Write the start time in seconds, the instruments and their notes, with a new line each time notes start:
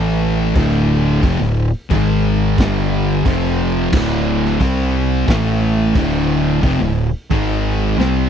Already playing: fingered electric bass A1, distorted electric guitar A2 E3 A3
0.55 fingered electric bass D1, distorted electric guitar D2 A2 D3, kick, open hi-hat
1.23 fingered electric bass F1, distorted electric guitar F2 C3, kick, open hi-hat
1.40 fingered electric bass D1, distorted electric guitar D2 A2
1.90 fingered electric bass G#1, distorted electric guitar G#2 D#3 G#3, kick, open hi-hat
2.58 fingered electric bass G1, distorted electric guitar G2 D3 G3, kick, snare, open hi-hat
3.25 fingered electric bass F1, distorted electric guitar F2 C3 F3, kick, open hi-hat
3.93 fingered electric bass D1, distorted electric guitar D2 A2 D3, kick, crash
4.46 snare
4.60 fingered electric bass C2, distorted electric guitar C3 G3 C4, kick, open hi-hat
5.27 fingered electric bass A1, distorted electric guitar A2 E3 A3, kick, snare, open hi-hat
5.95 fingered electric bass D1, distorted electric guitar D2 A2 D3, kick, open hi-hat
6.63 fingered electric bass F1, distorted electric guitar F2 C3, kick, open hi-hat
6.80 fingered electric bass D1, distorted electric guitar D2 A2
7.30 fingered electric bass G#1, distorted electric guitar G#2 D#3 G#3, kick, open hi-hat
7.98 fingered electric bass C2, distorted electric guitar C3 G3 C4, snare